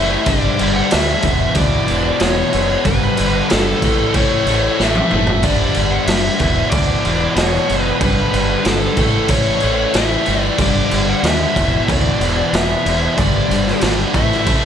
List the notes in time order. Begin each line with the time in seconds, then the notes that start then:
Already playing: F#1 A2 E3 A3 E5
0.26 G1 G2 D3 G3 D5, kick, crash
0.58 G1 G2 D3 G3, crash
0.76 F#5
0.91 D2 G2 D3 G3 E5, snare, crash
1.23 E1 E2 B2 E3, kick, crash
1.55 D2 E2 B2 E3 D5, kick, crash
1.87 E1 E2 B2 E3, crash
2.20 E1 E2 B2 E3 C#5, snare, crash
2.53 F#1 E2 B2 E3, crash
2.85 G1 G2 D3 G3 B4, kick, crash
3.17 G1 G2 D3 G3, crash
3.49 G2 D3 G3 A4, snare, crash
3.53 G1
3.81 A1 A2 E3 A3, kick, crash
4.14 A1 A2 E3 A3 C#5, kick, crash
4.46 A1 A2 E3 A3, crash
4.79 A1 A2 E3 A3 E5, snare
4.95 high tom
5.11 F#1 A2 E3 A3, mid tom
5.27 floor tom
5.43 G1 G2 D3 G3 D5, kick, crash
5.74 G1 G2 D3 G3, crash
5.91 F#5
6.06 F#1 G2 D3 G3 E5, snare, crash
6.39 E1 E2 B2 E3, kick, crash
6.70 D2 E2 B2 D5, kick, crash
6.74 E3
7.04 E1 E2 B2 E3, crash
7.36 E1 E2 B2 E3 C#5, snare, crash
7.68 F#1 E2 B2 E3, crash
7.82 B4
8.00 G1 G2 D3 G3, kick, crash
8.04 B4
8.31 G1 G2 D3 G3, crash
8.63 G1 G2 D3 G3 A4, snare, crash
8.95 A1 A2 E3 A3, kick, crash
9.28 A1 A2 E3 A3 C#5, kick, crash
9.60 A1 A2 E3 A3, crash
9.94 A1 A2 E3 A3 E5, snare, crash
10.26 G1 A2 E3 A3, crash
10.42 D5
10.58 G1 G2 D3 G3 D5, kick, crash
10.91 G1 G2 D3 G3, crash
11.09 F#5
11.23 D#2 G2 D3 G3 E5, snare, crash
11.55 E1 E2 B2 E3, kick, crash
11.88 D2 E2 B2 E3 D5, kick, crash
12.20 E1 E2 B2 E3, crash
12.53 E1 E2 B2 E3 E5, snare, crash
12.86 E1 E2 B2 E3, crash
13.18 G1 G2 D3 G3 D5, kick, crash
13.50 G1 G2 D3 G3, crash
13.67 snare
13.81 G#1 G2 D3 G3, snare, crash
14.14 A1 A2 E3 A3 E5, kick, crash
14.32 snare
14.46 A1 A2 E3 A3, kick, crash